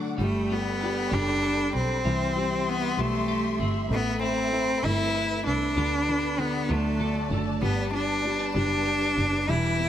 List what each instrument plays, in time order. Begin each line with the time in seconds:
Already playing: upright piano D3, clean electric guitar A3 D4 F#4, string section A4 D5 F#5 D6
0.18 double bass G1, clean electric guitar G3, upright piano G3, cello A3, string section A4 D5 G5 B5
0.49 upright piano G3, clean electric guitar B3, cello B3
0.80 upright piano G3, clean electric guitar D4
1.11 double bass F#1, upright piano G3, clean electric guitar B3, cello D4
1.42 clean electric guitar A4
1.73 double bass B1, cello C4
2.05 double bass C2, upright piano E3, clean electric guitar G3, string section G4 E5 C6
2.35 upright piano G3, clean electric guitar C4
2.67 cello B3, clean electric guitar E4
2.98 double bass B1, upright piano G3, cello A3, clean electric guitar C4
3.28 clean electric guitar G4
3.60 double bass G1, clean electric guitar C4
3.90 double bass A1, upright piano A3, cello B3, string section A4 B4 B5
4.21 upright piano A3, clean electric guitar C4, cello C4
4.52 upright piano A3, clean electric guitar E4
4.83 double bass G1, upright piano A3, clean electric guitar C4, cello E4
5.14 clean electric guitar B4
5.45 double bass C2, clean electric guitar C4, cello D4
5.74 double bass D2, upright piano D3, clean electric guitar B3, string section G4 B4 D5 B5
6.07 upright piano D3, clean electric guitar B3
6.38 upright piano D3, cello B3, clean electric guitar D4
6.69 double bass D2, upright piano D3, clean electric guitar F#3, cello A3, string section F#4 A4 A5
7.00 upright piano D3, clean electric guitar A4
7.30 double bass F#1, upright piano D3, clean electric guitar A3
7.62 double bass G1, upright piano G3, clean electric guitar B3, cello B3, string section G4 B4
7.93 upright piano G3, clean electric guitar B3, cello D4
8.25 upright piano G3, clean electric guitar C4
8.39 clean electric guitar D4
8.55 double bass F#1, upright piano G3, clean electric guitar B3, cello D4
8.85 clean electric guitar G4
9.01 clean electric guitar A4
9.17 double bass F#1, clean electric guitar B3
9.47 double bass E1, upright piano E3, clean electric guitar G3, cello E4, string section B4 E5 B5
9.79 clean electric guitar B3, upright piano B3